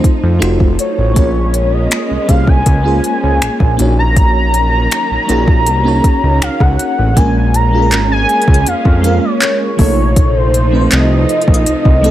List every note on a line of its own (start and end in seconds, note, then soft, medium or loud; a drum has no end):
0.00 0.39 F3 medium
0.00 0.39 A3 medium
0.00 0.43 C4 medium
0.00 0.40 D#4 medium
0.00 1.13 D#4 medium
0.00 0.41 F4 medium
0.00 0.43 C5 medium
0.00 kick medium
0.04 closed hi-hat soft
0.23 0.40 F2 loud
0.39 0.59 F1 loud
0.39 1.16 F3 medium
0.39 1.16 F#3 medium
0.39 1.00 A3 medium
0.39 1.01 D#4 medium
0.39 1.01 F4 medium
0.39 1.02 F#4 medium
0.39 1.16 A4 medium
0.39 finger snap loud
0.39 closed hi-hat medium
0.44 1.02 C5 loud
0.60 0.77 F1 medium
0.60 kick medium
0.79 1.75 C#5 medium
0.79 closed hi-hat medium
0.98 1.15 A1 medium
1.14 1.87 A#1 loud
1.14 3.76 G#3 medium
1.14 1.93 A#3 medium
1.14 3.76 A#3 medium
1.14 1.94 C#4 medium
1.14 3.76 C#4 medium
1.14 1.94 F4 medium
1.14 1.95 G#4 medium
1.14 kick loud
1.14 closed hi-hat medium
1.19 1.95 C#5 medium
1.54 closed hi-hat medium
1.73 2.29 D#5 medium
1.91 finger snap loud
1.91 closed hi-hat medium
2.11 2.18 C2 soft
2.27 2.63 C2 medium
2.27 2.67 A#3 medium
2.27 2.67 C#4 medium
2.27 2.68 F4 medium
2.27 2.68 G#4 medium
2.27 2.50 F5 medium
2.27 kick medium
2.27 closed hi-hat medium
2.31 2.69 C#5 medium
2.47 2.67 G#5 loud
2.47 kick medium
2.66 3.00 C#2 loud
2.66 3.94 G#5 loud
2.66 kick medium
2.66 closed hi-hat medium
2.83 3.75 A#3 medium
2.83 3.75 C#4 medium
2.83 3.76 F4 medium
2.83 3.77 G#4 medium
2.88 3.77 C5 medium
3.04 closed hi-hat medium
3.23 3.40 C#2 medium
3.42 finger snap loud
3.42 closed hi-hat medium
3.60 3.77 A#1 medium
3.60 kick medium
3.77 4.88 A#1 loud
3.77 7.13 D#3 medium
3.77 7.13 F#3 medium
3.77 4.98 A#3 medium
3.77 4.99 C#4 medium
3.77 7.13 C#4 medium
3.77 4.99 D#4 medium
3.77 5.00 F#4 medium
3.77 closed hi-hat medium
3.82 5.00 C#5 medium
3.99 6.38 A#5 loud
4.16 kick loud
4.16 closed hi-hat medium
4.54 closed hi-hat medium
4.91 finger snap loud
4.91 closed hi-hat medium
5.11 5.18 A#1 soft
5.27 5.69 A#1 medium
5.27 5.67 A#3 medium
5.27 5.67 C#4 medium
5.27 5.68 D#4 medium
5.27 5.69 F#4 medium
5.27 closed hi-hat medium
5.32 5.69 G#4 medium
5.48 kick loud
5.66 6.01 C2 medium
5.66 closed hi-hat medium
5.83 6.75 A#3 medium
5.83 6.76 C#4 medium
5.83 6.76 D#4 medium
5.83 6.77 F#4 medium
5.88 6.77 C#5 loud
6.04 kick medium
6.04 closed hi-hat medium
6.23 6.40 C#2 medium
6.42 6.63 F5 loud
6.42 finger snap loud
6.42 closed hi-hat medium
6.60 6.77 C#2 medium
6.60 7.19 F#5 loud
6.60 kick medium
6.60 cross-stick medium
6.79 closed hi-hat medium
6.98 7.15 A1 medium
7.15 7.94 A#1 loud
7.15 7.54 G#3 medium
7.15 9.76 G#3 medium
7.15 7.55 A#3 medium
7.15 9.76 A#3 medium
7.15 9.76 C#4 medium
7.15 7.55 C#4 medium
7.15 7.56 F4 medium
7.15 7.57 G#5 loud
7.15 kick loud
7.15 closed hi-hat medium
7.19 7.57 A#4 medium
7.54 8.11 A#5 loud
7.54 closed hi-hat medium
7.71 8.63 G#3 medium
7.71 8.63 A#3 medium
7.71 8.64 C#4 medium
7.71 8.64 F4 medium
7.76 7.81 G#4 medium
7.82 8.68 A#4 medium
7.92 8.26 G#1 medium
7.92 clap loud
7.92 closed hi-hat medium
8.12 8.69 G#5 loud
8.29 closed hi-hat soft
8.42 closed hi-hat soft
8.48 8.65 C#2 medium
8.48 kick loud
8.54 closed hi-hat medium
8.66 8.74 F2 medium
8.66 9.26 F5 loud
8.66 closed hi-hat medium
8.85 9.19 F2 medium
8.85 kick medium
9.02 9.78 G#3 medium
9.02 9.78 A#3 medium
9.02 9.79 C#4 medium
9.02 9.79 F4 medium
9.02 closed hi-hat medium
9.06 9.80 A#4 medium
9.24 9.80 C#5 loud
9.42 clap loud
9.42 closed hi-hat medium
9.77 10.88 A#1 loud
9.77 10.54 C3 medium
9.77 10.53 F3 medium
9.77 12.11 F3 medium
9.77 10.53 A3 medium
9.77 12.11 A3 medium
9.77 12.11 D#4 medium
9.77 10.54 D#4 medium
9.77 10.38 C#5 loud
9.77 kick medium
9.77 open hi-hat medium
9.81 10.55 A4 medium
10.16 kick loud
10.16 closed hi-hat medium
10.36 10.94 C5 loud
10.54 closed hi-hat medium
10.70 11.62 F3 medium
10.70 11.63 A3 medium
10.70 11.63 C4 medium
10.70 11.64 D#4 medium
10.75 10.80 B4 medium
10.81 11.68 C5 medium
10.91 11.26 C2 loud
10.91 12.11 D#5 loud
10.91 clap loud
10.91 closed hi-hat medium
11.29 closed hi-hat soft
11.41 closed hi-hat soft
11.48 11.65 A#1 medium
11.48 kick loud
11.54 closed hi-hat medium
11.66 closed hi-hat medium
11.85 12.11 C2 loud
11.85 kick medium
12.02 12.11 F3 medium
12.02 12.11 A3 medium
12.02 12.11 C4 medium
12.02 12.11 D#4 medium
12.02 closed hi-hat medium
12.06 12.11 A4 loud